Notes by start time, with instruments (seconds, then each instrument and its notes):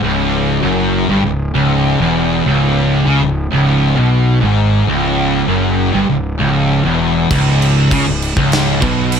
0.03 fingered electric bass C#1, distorted electric guitar C#2
0.64 fingered electric bass F#1, distorted electric guitar F#2
1.09 fingered electric bass G1, distorted electric guitar G2
1.25 fingered electric bass C#1, distorted electric guitar C#2
1.55 fingered electric bass C#1, distorted electric guitar C#2
2.00 fingered electric bass E1, distorted electric guitar E2
2.46 fingered electric bass C#1, distorted electric guitar C#2
3.06 fingered electric bass C#2, distorted electric guitar C#3
3.21 fingered electric bass C#1, distorted electric guitar C#2
3.51 fingered electric bass C#1, distorted electric guitar C#2
3.97 fingered electric bass B1, distorted electric guitar B2
4.43 fingered electric bass G#1, distorted electric guitar G#2
4.87 fingered electric bass C#1, distorted electric guitar C#2
5.48 fingered electric bass F#1, distorted electric guitar F#2
5.94 fingered electric bass G1, distorted electric guitar G2
6.09 fingered electric bass C#1, distorted electric guitar C#2
6.40 fingered electric bass C#1, distorted electric guitar C#2
6.85 fingered electric bass E1, distorted electric guitar E2
7.31 fingered electric bass C#1, distorted electric guitar C#2, kick, crash
7.62 crash
7.91 fingered electric bass C#2, distorted electric guitar C#3, kick, crash
8.07 fingered electric bass C#1, distorted electric guitar C#2
8.22 crash
8.37 fingered electric bass C#1, distorted electric guitar C#2, kick
8.52 snare, crash
8.82 fingered electric bass B1, distorted electric guitar B2, kick, crash
9.12 crash